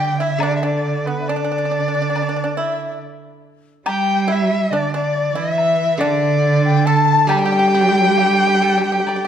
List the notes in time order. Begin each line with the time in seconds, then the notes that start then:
Already playing: D3 G4 G5
0.18 E4 E5
0.38 D3 D5, high woodblock
0.43 D4
0.56 E5
0.62 D4 D5
1.06 B3 B4
1.21 E5
1.28 D3 D4 D5
1.36 D4
1.44 D4
1.52 D4
1.58 D4
1.65 D4
1.71 D4
1.80 D4
1.88 D4
1.95 D4
2.02 D4
2.10 D4
2.15 D4, high woodblock
2.22 D4
2.29 D4
2.36 D4
2.44 D4
2.57 E4 E5
3.86 G3 G4 G5, high woodblock
4.28 E4 E5
4.32 E5
4.70 D3 D4 D5
4.94 D4 D5
5.34 E3 E4 E5
5.58 high woodblock
5.98 D3 D4 D5
6.65 G5
6.86 A4 A5
7.27 G3 G4 G5, high woodblock
7.39 G4
7.45 G4
7.52 G4
7.59 G4
7.68 G4
7.74 D4 G4
7.81 G4
7.89 G4
7.98 G4
8.04 G4
8.11 G4
8.17 G4, low woodblock
8.26 G4
8.33 G4
8.40 G4
8.47 G4
8.55 G4
8.62 G4 A4
8.69 G4
8.78 G4
8.84 G4
8.92 G4
9.00 G4
9.06 G4 D5, high woodblock
9.16 G4